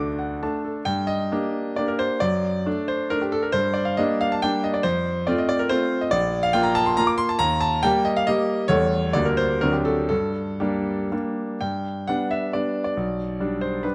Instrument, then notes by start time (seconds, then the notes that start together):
grand piano
Already playing: D2 A3 D4 A4 F#5 D6
0.19 F#5
0.43 A3 D4 A5
0.64 A4
0.85 G2 G5
1.07 D#5
1.32 A#3 D4 G4
1.76 A#3 D4 G4 D5
1.88 A#4
1.99 C5
2.20 F#2 D5
2.66 A3 D4
2.88 C5
3.10 A3 D4 A#4
3.22 G4
3.32 A4
3.43 A#4
3.52 G2 C5
3.74 D5
3.85 F5
3.97 G3 A#3 D4 D#5
4.21 F5
4.32 A5
4.42 G3 A#3 D4 G5
4.64 D#5
4.74 D5
4.83 F2 C5
5.27 A3 C4 F4 D5
5.38 D#5
5.49 D5
5.59 A#4
5.69 A3 C4 F4 C5
6.01 D#5
6.11 A#1 D5
6.43 F5
6.53 A#3 F4 G5
6.63 A#5
6.75 A5
6.86 C6
6.97 A#3 F4 A#5
7.07 D6
7.18 C6
7.29 A5
7.39 D#2 A#5
7.61 A5
7.83 G3 A#3 G4 G5
8.05 D#5
8.17 F5
8.27 G3 A#3 G4 D#5
8.68 E2 G3 A3 A4 C#5
9.13 D2 G3 A#3 D4 D5
9.25 A#4
9.37 C5
9.61 D2 F#3 C4 D4 A#4
9.73 G4
9.85 A4
10.09 G2 A4
10.60 G3 A#3 D4 G4
11.12 G3 A#3 D4
11.61 G2 G5
12.07 G3 B3 D4 F#5
12.31 E5
12.53 G3 B3 D4 D5
12.84 D5
12.97 B1
13.40 G3 D4
13.61 C5
13.83 G3 D4 B4